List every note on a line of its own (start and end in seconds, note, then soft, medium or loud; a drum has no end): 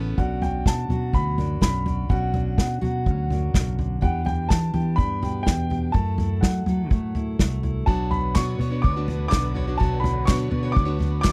0.00 0.14 A1 medium
0.00 0.17 C#3 medium
0.00 0.18 A3 medium
0.00 0.17 B3 medium
0.00 0.19 B3 medium
0.00 0.18 C#4 medium
0.00 0.19 E4 medium
0.00 0.17 A4 medium
0.17 0.62 B1 medium
0.17 1.38 B2 medium
0.17 1.14 C#4 medium
0.17 0.44 D4 medium
0.17 0.91 F#4 medium
0.17 0.42 F#5 medium
0.17 kick medium
0.17 floor tom medium
0.42 1.38 D4 medium
0.42 0.67 G5 medium
0.42 floor tom medium
0.66 0.88 B2 medium
0.66 1.16 A5 medium
0.66 kick medium
0.66 snare medium
0.66 floor tom medium
0.89 1.14 B2 medium
0.89 2.07 F#3 medium
0.89 2.10 F#4 medium
0.89 floor tom medium
1.13 1.58 D2 medium
1.13 1.60 C#4 soft
1.13 1.59 B5 medium
1.13 kick medium
1.13 floor tom medium
1.38 2.10 F#2 medium
1.38 1.85 D4 soft
1.38 floor tom medium
1.61 2.06 B1 medium
1.61 2.07 C#4 soft
1.61 2.12 B5 medium
1.61 kick medium
1.61 snare medium
1.61 floor tom medium
1.86 2.11 D4 soft
1.86 floor tom medium
2.09 2.54 B1 medium
2.09 3.30 B2 medium
2.09 3.06 C#4 medium
2.09 2.33 D4 medium
2.09 2.80 F#4 medium
2.09 2.56 F#5 medium
2.09 kick medium
2.09 floor tom medium
2.34 3.30 D4 medium
2.34 floor tom medium
2.58 2.80 B2 medium
2.58 3.26 F#5 medium
2.58 kick medium
2.58 snare medium
2.58 floor tom medium
2.81 3.08 B2 medium
2.81 3.99 F#3 medium
2.81 4.02 F#4 medium
2.81 floor tom medium
3.06 3.50 D2 medium
3.06 4.00 C#4 soft
3.06 kick medium
3.06 floor tom medium
3.30 4.03 F#2 medium
3.30 4.00 D4 medium
3.30 floor tom medium
3.54 3.98 B1 medium
3.54 3.78 C#3 medium
3.54 kick medium
3.54 snare medium
3.54 floor tom medium
3.79 4.03 D3 medium
3.79 floor tom medium
4.01 4.47 E2 medium
4.01 6.67 E3 medium
4.01 4.97 D4 medium
4.01 4.23 G4 medium
4.01 4.27 F#5 medium
4.01 kick medium
4.01 floor tom medium
4.25 4.72 G4 medium
4.25 4.51 G5 medium
4.25 floor tom medium
4.49 4.72 E3 medium
4.49 4.99 A5 medium
4.49 kick loud
4.49 snare medium
4.49 floor tom medium
4.73 4.99 E3 medium
4.73 5.92 B3 medium
4.73 5.22 G4 medium
4.73 floor tom medium
4.96 5.43 G2 medium
4.96 5.45 D4 medium
4.96 5.42 B5 medium
4.96 kick medium
4.96 floor tom medium
5.22 5.95 B2 medium
5.22 5.69 G4 medium
5.22 floor tom medium
5.43 5.91 E2 medium
5.43 5.92 D4 medium
5.43 5.90 G5 medium
5.43 kick medium
5.43 snare medium
5.43 floor tom medium
5.70 5.92 G4 medium
5.70 floor tom medium
5.92 7.87 F#2 medium
5.92 6.39 F#2 medium
5.92 6.91 A3 medium
5.92 6.18 E4 medium
5.92 6.68 A4 medium
5.92 6.43 A5 medium
5.92 kick medium
5.92 floor tom medium
6.18 7.14 E4 medium
6.18 floor tom medium
6.41 6.65 F#3 medium
6.41 7.10 F#5 medium
6.41 kick loud
6.41 snare medium
6.41 floor tom medium
6.66 6.91 F#3 medium
6.66 7.85 F#3 medium
6.66 7.86 A4 medium
6.66 floor tom medium
6.91 7.35 A2 medium
6.91 7.38 A3 soft
6.91 kick medium
6.91 floor tom medium
7.15 7.62 E4 medium
7.15 floor tom medium
7.39 7.84 C2 medium
7.39 7.88 A3 soft
7.39 kick medium
7.39 snare medium
7.39 floor tom medium
7.63 7.85 E4 soft
7.63 floor tom medium
7.86 8.32 B1 medium
7.86 8.34 B2 medium
7.86 11.32 D3 medium
7.86 8.35 F#3 medium
7.86 8.36 B3 medium
7.86 8.37 D4 medium
7.86 11.32 D4 medium
7.86 8.36 F#4 medium
7.86 9.79 B4 medium
7.86 8.36 C#5 medium
7.86 8.12 A5 medium
7.86 kick medium
7.86 floor tom medium
8.11 8.34 B5 medium
8.11 floor tom medium
8.35 8.58 B2 medium
8.35 8.60 B2 medium
8.35 8.60 F#3 medium
8.35 8.57 B3 medium
8.35 8.58 D4 medium
8.35 8.59 F#4 medium
8.35 8.59 C#5 medium
8.35 8.85 C#6 medium
8.35 kick medium
8.35 snare loud
8.35 clap medium
8.35 floor tom medium
8.58 8.86 B2 medium
8.58 8.71 B3 soft
8.58 8.70 D4 soft
8.58 8.70 F#4 medium
8.58 8.69 C#5 medium
8.58 floor tom medium
8.70 8.82 B3 soft
8.70 8.83 D4 soft
8.70 8.83 F#4 soft
8.70 8.83 C#5 soft
8.82 9.28 D2 medium
8.82 8.96 B3 medium
8.82 8.96 D4 soft
8.82 8.95 F#4 medium
8.82 8.95 C#5 medium
8.82 9.27 D6 medium
8.82 kick medium
8.82 floor tom medium
8.96 9.05 B3 soft
8.96 9.07 D4 soft
8.96 9.08 F#4 soft
8.96 9.08 C#5 soft
9.07 9.30 B3 soft
9.07 9.29 D4 medium
9.07 9.29 F#4 medium
9.07 9.29 C#5 medium
9.07 floor tom medium
9.28 9.76 B1 medium
9.28 9.55 B2 medium
9.28 9.55 F#3 medium
9.28 9.53 B3 medium
9.28 9.54 D4 medium
9.28 9.54 F#4 medium
9.28 9.55 C#5 medium
9.28 9.75 D6 loud
9.28 snare medium
9.28 clap medium
9.28 floor tom medium
9.32 kick medium
9.54 9.67 B3 soft
9.54 9.68 D4 soft
9.54 9.67 F#4 medium
9.54 9.66 C#5 medium
9.54 floor tom medium
9.67 9.78 B3 soft
9.67 9.78 D4 soft
9.67 9.79 F#4 soft
9.67 9.78 C#5 soft
9.78 10.24 B1 medium
9.78 10.27 B2 medium
9.78 10.26 F#3 medium
9.78 10.27 B3 medium
9.78 10.28 D4 medium
9.78 10.27 F#4 medium
9.78 11.32 B4 medium
9.78 10.27 C#5 medium
9.78 10.01 A5 medium
9.78 kick medium
9.78 floor tom medium
10.00 10.27 B5 medium
10.04 floor tom medium
10.25 10.52 B2 medium
10.25 10.50 B2 medium
10.25 10.52 F#3 medium
10.25 10.49 B3 medium
10.25 10.50 D4 medium
10.25 10.50 F#4 medium
10.25 10.51 C#5 medium
10.25 10.76 C#6 medium
10.25 kick loud
10.25 snare loud
10.25 clap medium
10.25 floor tom medium
10.50 10.78 B2 medium
10.50 10.63 B3 soft
10.50 10.64 D4 medium
10.50 10.63 F#4 medium
10.50 10.62 C#5 soft
10.50 floor tom medium
10.63 10.73 B3 soft
10.63 10.74 D4 soft
10.63 10.74 F#4 soft
10.63 10.75 C#5 medium
10.72 10.87 B3 medium
10.72 10.85 D4 medium
10.72 10.85 F#4 medium
10.72 10.84 C#5 medium
10.72 11.20 D6 medium
10.76 11.20 D2 medium
10.76 kick loud
10.76 floor tom medium
10.85 10.97 B3 soft
10.85 10.98 D4 medium
10.85 10.98 F#4 medium
10.85 10.99 C#5 medium
10.99 11.24 B3 medium
10.99 11.23 D4 medium
10.99 11.24 F#4 medium
10.99 11.24 C#5 medium
10.99 floor tom medium
11.21 11.32 D2 medium
11.21 11.32 B2 medium
11.21 11.32 F#3 medium
11.21 11.32 B3 medium
11.21 11.32 D4 medium
11.21 11.32 F#4 medium
11.21 11.32 D6 loud
11.21 kick medium
11.21 snare medium
11.21 clap medium
11.21 floor tom medium
11.25 11.32 C#5 medium